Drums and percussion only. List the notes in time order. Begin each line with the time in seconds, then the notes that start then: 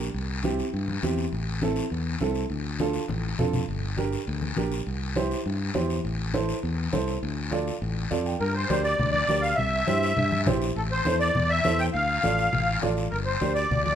0.00 short guiro
0.14 long guiro
0.44 high conga, short guiro
0.59 short guiro
0.74 long guiro
0.88 high conga
1.03 high conga, short guiro
1.18 short guiro
1.33 long guiro
1.62 high conga, short guiro
1.76 short guiro
1.90 long guiro
2.20 high conga, short guiro
2.35 short guiro
2.50 long guiro
2.79 high conga, short guiro
2.93 short guiro
3.08 high conga, long guiro
3.38 low conga, short guiro
3.53 low conga, short guiro
3.69 long guiro
3.98 high conga, short guiro
4.13 short guiro
4.27 long guiro
4.42 high conga
4.57 high conga, short guiro
4.72 short guiro
4.87 long guiro
5.16 high conga, short guiro
5.31 short guiro
5.46 long guiro
5.75 high conga, short guiro
5.90 short guiro
6.05 long guiro
6.34 high conga, short guiro
6.49 short guiro
6.63 long guiro
6.93 high conga, short guiro
7.08 short guiro
7.23 long guiro
7.52 high conga, short guiro
7.67 short guiro
7.82 long guiro
8.11 high conga, short guiro
8.26 short guiro
8.41 long guiro
8.70 high conga, short guiro
8.84 short guiro
8.99 low conga, long guiro
9.14 high conga
9.29 high conga, short guiro
9.43 short guiro
9.58 low conga, long guiro
9.87 high conga, short guiro
10.03 short guiro
10.17 low conga, long guiro
10.32 high conga
10.47 high conga, low conga, short guiro
10.62 short guiro
10.76 long guiro
11.05 high conga, short guiro
11.21 short guiro
11.35 low conga, long guiro
11.65 high conga, short guiro
11.79 short guiro
11.94 long guiro
12.23 high conga, short guiro
12.38 short guiro
12.53 low conga, long guiro
12.82 high conga, short guiro
12.97 short guiro
13.12 long guiro
13.41 high conga, short guiro
13.56 short guiro
13.71 low conga, long guiro
13.86 high conga